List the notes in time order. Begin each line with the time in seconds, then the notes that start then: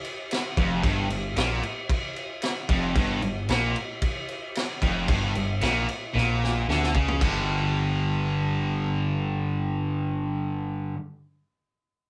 0.04 crash
0.31 snare, crash
0.57 F1 F2, kick, crash
0.83 G1 G2, kick, crash
1.10 G1 G2, crash
1.36 A#1 A#2, snare, crash
1.63 crash
1.89 kick, crash
2.16 crash
2.42 snare, crash
2.69 F1 F2, kick, crash
2.95 G1 G2, kick, crash
3.22 G1 G2, crash
3.49 A#1 A#2, snare, crash
3.76 crash
4.02 kick, crash
4.28 crash
4.55 snare, crash
4.82 F1 F2, kick, crash
5.08 G1 G2, kick, crash
5.35 G1 G2, crash
5.61 A#1 A#2, snare, crash
5.89 crash
6.14 A#1 A#2, snare
6.44 snare
6.68 D2 D3, snare
6.83 snare
6.95 C#2 C#3, kick
7.08 floor tom
7.20 G1 G2 D3, kick, crash
7.24 G3